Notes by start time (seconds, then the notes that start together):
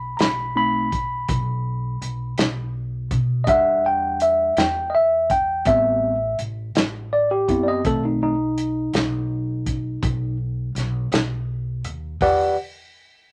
Already playing: B1 B5
0.17 B1 A#5, snare, closed hi-hat
0.21 B5
0.55 A3 C4 D#4 B5
0.92 kick, closed hi-hat
1.28 B1, kick, closed hi-hat
2.01 B1, closed hi-hat
2.38 B1, snare, closed hi-hat
3.11 B2, kick, closed hi-hat
3.44 G3 D4 D#5 F#5, kick, closed hi-hat
3.49 E5
3.86 G5
4.20 E5, closed hi-hat
4.56 E2 G5, snare, closed hi-hat
4.90 D#5
4.95 E5
5.30 G5, kick, closed hi-hat
5.65 A1 G3 B3 C4 E5, kick, closed hi-hat
6.39 A1, closed hi-hat
6.75 A1, snare, closed hi-hat
7.13 D5
7.31 G4
7.48 F#2 B3 C4 E4 G4, kick, closed hi-hat
7.63 D5
7.68 D#5
7.84 B1 D#3 A3 C4 A4, kick, closed hi-hat
8.05 D#4
8.23 D#4
8.58 closed hi-hat
8.93 B1, snare, closed hi-hat
9.66 kick, closed hi-hat
10.02 B1, kick, closed hi-hat
10.75 B1, snare, closed hi-hat
11.12 B1, snare, closed hi-hat
11.84 D#2, closed hi-hat
12.21 E2 G4 B4 D5 F#5, kick, open hi-hat